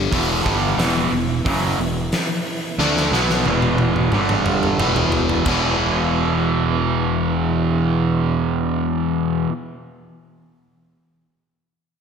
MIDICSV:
0, 0, Header, 1, 5, 480
1, 0, Start_track
1, 0, Key_signature, 1, "minor"
1, 0, Tempo, 665927
1, 92, Time_signature, 4, 2, 24, 8
1, 8650, End_track
2, 0, Start_track
2, 0, Title_t, "Tonewheel organ"
2, 0, Program_c, 0, 16
2, 0, Note_on_c, 0, 55, 67
2, 0, Note_on_c, 0, 62, 59
2, 0, Note_on_c, 0, 69, 72
2, 70, Note_on_c, 0, 52, 66
2, 70, Note_on_c, 0, 64, 87
2, 73, Note_on_c, 0, 59, 66
2, 81, Note_off_c, 0, 55, 0
2, 84, Note_off_c, 0, 69, 0
2, 86, Note_off_c, 0, 62, 0
2, 2936, Note_off_c, 0, 52, 0
2, 2937, Note_off_c, 0, 64, 0
2, 2938, Note_off_c, 0, 59, 0
2, 2970, Note_on_c, 0, 55, 73
2, 2970, Note_on_c, 0, 62, 67
2, 2970, Note_on_c, 0, 69, 77
2, 3442, Note_on_c, 0, 52, 62
2, 3443, Note_on_c, 0, 59, 54
2, 3444, Note_on_c, 0, 64, 72
2, 3448, Note_off_c, 0, 69, 0
2, 3449, Note_off_c, 0, 55, 0
2, 3449, Note_off_c, 0, 62, 0
2, 3910, Note_off_c, 0, 64, 0
2, 3911, Note_off_c, 0, 52, 0
2, 3914, Note_off_c, 0, 59, 0
2, 3919, Note_on_c, 0, 64, 70
2, 3920, Note_on_c, 0, 52, 71
2, 3923, Note_on_c, 0, 59, 61
2, 6395, Note_off_c, 0, 52, 0
2, 6395, Note_off_c, 0, 64, 0
2, 6397, Note_off_c, 0, 59, 0
2, 8650, End_track
3, 0, Start_track
3, 0, Title_t, "Overdriven electric guitar"
3, 0, Program_c, 1, 29
3, 0, Note_on_c, 1, 43, 98
3, 0, Note_on_c, 1, 50, 102
3, 0, Note_on_c, 1, 55, 101
3, 83, Note_off_c, 1, 43, 0
3, 87, Note_off_c, 1, 50, 0
3, 88, Note_off_c, 1, 55, 0
3, 97, Note_on_c, 1, 40, 112
3, 98, Note_on_c, 1, 47, 121
3, 101, Note_on_c, 1, 52, 106
3, 328, Note_off_c, 1, 40, 0
3, 328, Note_off_c, 1, 47, 0
3, 330, Note_off_c, 1, 52, 0
3, 332, Note_on_c, 1, 43, 108
3, 338, Note_on_c, 1, 50, 100
3, 344, Note_on_c, 1, 55, 109
3, 566, Note_off_c, 1, 43, 0
3, 569, Note_off_c, 1, 50, 0
3, 572, Note_off_c, 1, 55, 0
3, 573, Note_on_c, 1, 40, 91
3, 576, Note_on_c, 1, 47, 94
3, 581, Note_on_c, 1, 52, 89
3, 805, Note_off_c, 1, 40, 0
3, 808, Note_off_c, 1, 47, 0
3, 810, Note_off_c, 1, 52, 0
3, 814, Note_on_c, 1, 40, 64
3, 818, Note_on_c, 1, 47, 75
3, 1006, Note_off_c, 1, 40, 0
3, 1008, Note_off_c, 1, 47, 0
3, 1053, Note_on_c, 1, 42, 86
3, 1054, Note_on_c, 1, 49, 98
3, 1063, Note_on_c, 1, 54, 102
3, 1287, Note_off_c, 1, 42, 0
3, 1287, Note_off_c, 1, 49, 0
3, 1290, Note_on_c, 1, 40, 69
3, 1291, Note_off_c, 1, 54, 0
3, 1294, Note_on_c, 1, 47, 80
3, 1485, Note_off_c, 1, 40, 0
3, 1487, Note_off_c, 1, 47, 0
3, 2013, Note_on_c, 1, 50, 86
3, 2018, Note_on_c, 1, 57, 111
3, 2024, Note_on_c, 1, 62, 122
3, 2247, Note_off_c, 1, 50, 0
3, 2250, Note_off_c, 1, 57, 0
3, 2253, Note_off_c, 1, 62, 0
3, 2254, Note_on_c, 1, 47, 113
3, 2259, Note_on_c, 1, 54, 104
3, 2261, Note_on_c, 1, 59, 117
3, 2488, Note_off_c, 1, 47, 0
3, 2490, Note_off_c, 1, 54, 0
3, 2491, Note_off_c, 1, 59, 0
3, 2496, Note_on_c, 1, 40, 80
3, 2502, Note_on_c, 1, 47, 90
3, 2507, Note_on_c, 1, 52, 104
3, 2969, Note_off_c, 1, 40, 0
3, 2972, Note_off_c, 1, 47, 0
3, 2975, Note_off_c, 1, 52, 0
3, 2979, Note_on_c, 1, 43, 85
3, 2983, Note_on_c, 1, 50, 98
3, 2991, Note_on_c, 1, 55, 106
3, 3451, Note_off_c, 1, 43, 0
3, 3452, Note_off_c, 1, 50, 0
3, 3454, Note_on_c, 1, 40, 84
3, 3457, Note_off_c, 1, 55, 0
3, 3457, Note_on_c, 1, 47, 99
3, 3465, Note_on_c, 1, 52, 106
3, 3921, Note_off_c, 1, 40, 0
3, 3930, Note_off_c, 1, 47, 0
3, 3930, Note_on_c, 1, 40, 112
3, 3934, Note_off_c, 1, 52, 0
3, 3947, Note_on_c, 1, 47, 116
3, 3958, Note_on_c, 1, 52, 118
3, 6836, Note_off_c, 1, 40, 0
3, 6854, Note_off_c, 1, 47, 0
3, 6865, Note_off_c, 1, 52, 0
3, 8650, End_track
4, 0, Start_track
4, 0, Title_t, "Fingered electric bass"
4, 0, Program_c, 2, 33
4, 89, Note_on_c, 2, 28, 111
4, 314, Note_off_c, 2, 28, 0
4, 330, Note_on_c, 2, 31, 103
4, 555, Note_off_c, 2, 31, 0
4, 561, Note_on_c, 2, 28, 103
4, 790, Note_off_c, 2, 28, 0
4, 798, Note_on_c, 2, 28, 74
4, 1029, Note_off_c, 2, 28, 0
4, 1052, Note_on_c, 2, 30, 119
4, 1276, Note_off_c, 2, 30, 0
4, 1283, Note_on_c, 2, 28, 93
4, 1512, Note_off_c, 2, 28, 0
4, 2006, Note_on_c, 2, 38, 94
4, 2234, Note_off_c, 2, 38, 0
4, 2244, Note_on_c, 2, 35, 100
4, 2473, Note_off_c, 2, 35, 0
4, 2493, Note_on_c, 2, 28, 110
4, 2946, Note_off_c, 2, 28, 0
4, 2973, Note_on_c, 2, 31, 116
4, 3426, Note_off_c, 2, 31, 0
4, 3447, Note_on_c, 2, 28, 108
4, 3903, Note_off_c, 2, 28, 0
4, 3935, Note_on_c, 2, 28, 114
4, 6813, Note_off_c, 2, 28, 0
4, 8650, End_track
5, 0, Start_track
5, 0, Title_t, "Drums"
5, 90, Note_on_c, 9, 36, 111
5, 94, Note_on_c, 9, 46, 70
5, 162, Note_off_c, 9, 36, 0
5, 166, Note_off_c, 9, 46, 0
5, 331, Note_on_c, 9, 36, 109
5, 341, Note_on_c, 9, 38, 33
5, 403, Note_off_c, 9, 36, 0
5, 413, Note_off_c, 9, 38, 0
5, 570, Note_on_c, 9, 46, 67
5, 575, Note_on_c, 9, 38, 118
5, 642, Note_off_c, 9, 46, 0
5, 647, Note_off_c, 9, 38, 0
5, 697, Note_on_c, 9, 38, 35
5, 769, Note_off_c, 9, 38, 0
5, 1052, Note_on_c, 9, 36, 106
5, 1055, Note_on_c, 9, 46, 64
5, 1124, Note_off_c, 9, 36, 0
5, 1127, Note_off_c, 9, 46, 0
5, 1529, Note_on_c, 9, 46, 72
5, 1534, Note_on_c, 9, 38, 121
5, 1602, Note_off_c, 9, 46, 0
5, 1606, Note_off_c, 9, 38, 0
5, 2015, Note_on_c, 9, 38, 67
5, 2087, Note_off_c, 9, 38, 0
5, 2138, Note_on_c, 9, 38, 69
5, 2210, Note_off_c, 9, 38, 0
5, 2259, Note_on_c, 9, 38, 67
5, 2331, Note_off_c, 9, 38, 0
5, 2377, Note_on_c, 9, 38, 68
5, 2449, Note_off_c, 9, 38, 0
5, 2491, Note_on_c, 9, 48, 82
5, 2563, Note_off_c, 9, 48, 0
5, 2612, Note_on_c, 9, 48, 79
5, 2684, Note_off_c, 9, 48, 0
5, 2727, Note_on_c, 9, 48, 89
5, 2799, Note_off_c, 9, 48, 0
5, 2854, Note_on_c, 9, 47, 69
5, 2926, Note_off_c, 9, 47, 0
5, 2968, Note_on_c, 9, 47, 91
5, 3040, Note_off_c, 9, 47, 0
5, 3093, Note_on_c, 9, 47, 94
5, 3165, Note_off_c, 9, 47, 0
5, 3213, Note_on_c, 9, 45, 102
5, 3285, Note_off_c, 9, 45, 0
5, 3337, Note_on_c, 9, 45, 87
5, 3409, Note_off_c, 9, 45, 0
5, 3456, Note_on_c, 9, 45, 120
5, 3529, Note_off_c, 9, 45, 0
5, 3576, Note_on_c, 9, 43, 102
5, 3648, Note_off_c, 9, 43, 0
5, 3691, Note_on_c, 9, 43, 105
5, 3764, Note_off_c, 9, 43, 0
5, 3816, Note_on_c, 9, 43, 106
5, 3888, Note_off_c, 9, 43, 0
5, 3932, Note_on_c, 9, 49, 83
5, 3936, Note_on_c, 9, 36, 121
5, 4004, Note_off_c, 9, 49, 0
5, 4008, Note_off_c, 9, 36, 0
5, 8650, End_track
0, 0, End_of_file